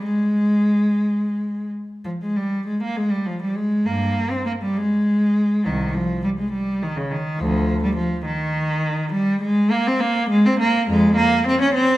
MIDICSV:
0, 0, Header, 1, 2, 480
1, 0, Start_track
1, 0, Tempo, 668151
1, 30, Time_signature, 6, 3, 24, 8
1, 1470, Tempo, 616016
1, 1950, Tempo, 595238
1, 4350, Tempo, 584226
1, 9555, End_track
2, 0, Start_track
2, 0, Title_t, "Cello"
2, 0, Program_c, 0, 42
2, 24, Note_on_c, 0, 56, 80
2, 1209, Note_off_c, 0, 56, 0
2, 1472, Note_on_c, 0, 53, 52
2, 1520, Note_off_c, 0, 53, 0
2, 1607, Note_on_c, 0, 56, 54
2, 1716, Note_on_c, 0, 55, 56
2, 1718, Note_off_c, 0, 56, 0
2, 1952, Note_on_c, 0, 56, 53
2, 1953, Note_off_c, 0, 55, 0
2, 2071, Note_off_c, 0, 56, 0
2, 2084, Note_on_c, 0, 58, 56
2, 2195, Note_on_c, 0, 56, 65
2, 2196, Note_off_c, 0, 58, 0
2, 2309, Note_on_c, 0, 55, 58
2, 2314, Note_off_c, 0, 56, 0
2, 2430, Note_off_c, 0, 55, 0
2, 2430, Note_on_c, 0, 53, 56
2, 2550, Note_off_c, 0, 53, 0
2, 2563, Note_on_c, 0, 55, 53
2, 2669, Note_on_c, 0, 56, 60
2, 2675, Note_off_c, 0, 55, 0
2, 2911, Note_off_c, 0, 56, 0
2, 2911, Note_on_c, 0, 43, 49
2, 2914, Note_on_c, 0, 58, 63
2, 3249, Note_off_c, 0, 43, 0
2, 3272, Note_on_c, 0, 60, 55
2, 3276, Note_off_c, 0, 58, 0
2, 3394, Note_off_c, 0, 60, 0
2, 3400, Note_on_c, 0, 58, 54
2, 3448, Note_off_c, 0, 58, 0
2, 3531, Note_on_c, 0, 55, 56
2, 3641, Note_off_c, 0, 55, 0
2, 3646, Note_on_c, 0, 56, 69
2, 4355, Note_off_c, 0, 56, 0
2, 4366, Note_on_c, 0, 36, 47
2, 4366, Note_on_c, 0, 51, 59
2, 4581, Note_off_c, 0, 36, 0
2, 4597, Note_off_c, 0, 51, 0
2, 4600, Note_on_c, 0, 53, 65
2, 4835, Note_off_c, 0, 53, 0
2, 4843, Note_on_c, 0, 55, 60
2, 4888, Note_off_c, 0, 55, 0
2, 4964, Note_on_c, 0, 56, 62
2, 5076, Note_off_c, 0, 56, 0
2, 5076, Note_on_c, 0, 55, 66
2, 5311, Note_off_c, 0, 55, 0
2, 5323, Note_on_c, 0, 51, 64
2, 5438, Note_off_c, 0, 51, 0
2, 5440, Note_on_c, 0, 49, 59
2, 5556, Note_off_c, 0, 49, 0
2, 5557, Note_on_c, 0, 51, 62
2, 5792, Note_on_c, 0, 38, 56
2, 5793, Note_off_c, 0, 51, 0
2, 5796, Note_on_c, 0, 53, 66
2, 6119, Note_off_c, 0, 38, 0
2, 6146, Note_off_c, 0, 53, 0
2, 6151, Note_on_c, 0, 55, 66
2, 6254, Note_on_c, 0, 53, 64
2, 6262, Note_off_c, 0, 55, 0
2, 6490, Note_off_c, 0, 53, 0
2, 6499, Note_on_c, 0, 51, 73
2, 7200, Note_off_c, 0, 51, 0
2, 7215, Note_on_c, 0, 55, 76
2, 7448, Note_off_c, 0, 55, 0
2, 7453, Note_on_c, 0, 56, 83
2, 7689, Note_off_c, 0, 56, 0
2, 7695, Note_on_c, 0, 58, 80
2, 7814, Note_off_c, 0, 58, 0
2, 7826, Note_on_c, 0, 60, 77
2, 7935, Note_on_c, 0, 58, 81
2, 7939, Note_off_c, 0, 60, 0
2, 8173, Note_on_c, 0, 56, 82
2, 8174, Note_off_c, 0, 58, 0
2, 8291, Note_off_c, 0, 56, 0
2, 8309, Note_on_c, 0, 60, 75
2, 8423, Note_on_c, 0, 58, 84
2, 8424, Note_off_c, 0, 60, 0
2, 8658, Note_off_c, 0, 58, 0
2, 8663, Note_on_c, 0, 41, 69
2, 8665, Note_on_c, 0, 56, 83
2, 8885, Note_off_c, 0, 41, 0
2, 8888, Note_on_c, 0, 58, 89
2, 8898, Note_off_c, 0, 56, 0
2, 9131, Note_off_c, 0, 58, 0
2, 9142, Note_on_c, 0, 60, 81
2, 9258, Note_on_c, 0, 61, 78
2, 9261, Note_off_c, 0, 60, 0
2, 9364, Note_on_c, 0, 60, 87
2, 9381, Note_off_c, 0, 61, 0
2, 9555, Note_off_c, 0, 60, 0
2, 9555, End_track
0, 0, End_of_file